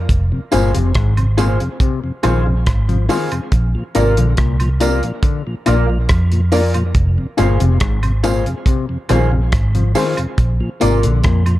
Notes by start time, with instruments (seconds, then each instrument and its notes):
0.09 fingered electric bass F1, kick, closed hi-hat
0.32 tonewheel organ F2 C3
0.52 fingered electric bass G1, clav A#2, tonewheel organ G#3 C4 F4, upright piano F4 G#4 C5, clean electric guitar G#4 C5 F5, closed hi-hat, tambourine
0.75 fingered electric bass F1, tonewheel organ F2 C3, clav C3, closed hi-hat
0.95 fingered electric bass G#1, clav G#2, kick, cross-stick, closed hi-hat
1.17 tonewheel organ F2 C3, closed hi-hat, high woodblock
1.37 clav A#2, tonewheel organ G#3 C4 F4, upright piano F4 G#4 C5, clean electric guitar G#4 C5 F5, closed hi-hat, tambourine
1.60 tonewheel organ F2 C3, upright piano G#4 C5, closed hi-hat
1.80 clav C3, kick, closed hi-hat
2.04 tonewheel organ F2 C3
2.23 fingered electric bass A#1, clav D#3, tonewheel organ G#3 C4 F4, upright piano F4 G#4 C5, clean electric guitar G#4 C5 F5, closed hi-hat, tambourine, high woodblock
2.46 tonewheel organ F2 C3, upright piano G#4 C5, muted clean electric guitar stroke
2.67 fingered electric bass G#1, kick, cross-stick, closed hi-hat
2.89 tonewheel organ F2 C3, clav F3, closed hi-hat
3.09 clav D#3, tonewheel organ G#3 C4 F4, upright piano F4 G#4 C5, clean electric guitar G#4 C5 F5, open hi-hat, tambourine
3.32 tonewheel organ F2 C3, closed hi-hat, high woodblock
3.52 fingered electric bass A#1, kick, closed hi-hat
3.75 tonewheel organ A#2 F3
3.95 fingered electric bass G#1, clav C3, tonewheel organ A#3 D4 F4, upright piano F4 A#4 D5, clean electric guitar A#4 D5 F5, closed hi-hat, tambourine
4.17 fingered electric bass A#1, tonewheel organ A#2 F3, clav D3, closed hi-hat
4.37 fingered electric bass C2, clav A#2, kick, cross-stick, closed hi-hat
4.60 tonewheel organ A#2 F3, closed hi-hat, high woodblock
4.80 clav C3, tonewheel organ A#3 D4 F4, upright piano F4 A#4 D5, clean electric guitar A#4 D5 F5, closed hi-hat, tambourine
5.03 tonewheel organ A#2 F3, upright piano A#4 D5, closed hi-hat
5.23 clav D3, kick, closed hi-hat
5.47 tonewheel organ A#2 F3
5.66 fingered electric bass A#1, clav A#2, tonewheel organ A#3 D4 F4, upright piano F4 A#4 D5, clean electric guitar A#4 D5 F5, closed hi-hat, tambourine, high woodblock
5.89 tonewheel organ A#2 F3, upright piano A#4 D5, muted clean electric guitar stroke
6.09 fingered electric bass F2, kick, cross-stick, closed hi-hat
6.32 tonewheel organ A#2 F3, closed hi-hat
6.52 tonewheel organ A#3 D4 F4, upright piano F4 A#4 D5, clean electric guitar A#4 D5 F5, open hi-hat, tambourine
6.74 tonewheel organ A#2 F3, closed hi-hat, high woodblock
6.95 fingered electric bass F1, kick, closed hi-hat
7.18 tonewheel organ F2 C3
7.37 fingered electric bass G1, clav A#2, tonewheel organ G#3 C4 F4, upright piano F4 G#4 C5, clean electric guitar G#4 C5 F5, closed hi-hat, tambourine
7.60 fingered electric bass F1, tonewheel organ F2 C3, clav C3, closed hi-hat
7.80 clav G#2, kick, cross-stick, closed hi-hat
8.03 tonewheel organ F2 C3, closed hi-hat, high woodblock
8.23 clav A#2, tonewheel organ G#3 C4 F4, upright piano F4 G#4 C5, clean electric guitar G#4 C5 F5, closed hi-hat, tambourine
8.46 tonewheel organ F2 C3, upright piano G#4 C5, closed hi-hat
8.66 clav C3, kick, closed hi-hat
8.89 tonewheel organ F2 C3
9.09 fingered electric bass A#1, clav D#3, tonewheel organ G#3 C4 F4, upright piano F4 G#4 C5, clean electric guitar G#4 C5 F5, closed hi-hat, tambourine, high woodblock
9.32 tonewheel organ F2 C3, upright piano G#4 C5, muted clean electric guitar stroke
9.52 fingered electric bass G#1, kick, cross-stick, closed hi-hat
9.75 tonewheel organ F2 C3, clav F3, closed hi-hat
9.95 clav D#3, tonewheel organ G#3 C4 F4, upright piano F4 G#4 C5, clean electric guitar G#4 C5 F5, open hi-hat, tambourine
10.17 tonewheel organ F2 C3, closed hi-hat, high woodblock
10.38 fingered electric bass A#1, kick, closed hi-hat
10.60 tonewheel organ A#2 F3
10.80 fingered electric bass G#1, clav C3, tonewheel organ A#3 D4 F4, upright piano F4 A#4 D5, clean electric guitar F4 A#4 D5, closed hi-hat, tambourine
11.03 fingered electric bass A#1, tonewheel organ A#2 F3, clav D3, closed hi-hat
11.24 fingered electric bass F2, clav A#2, kick, cross-stick, closed hi-hat
11.46 tonewheel organ A#2 F3, closed hi-hat, high woodblock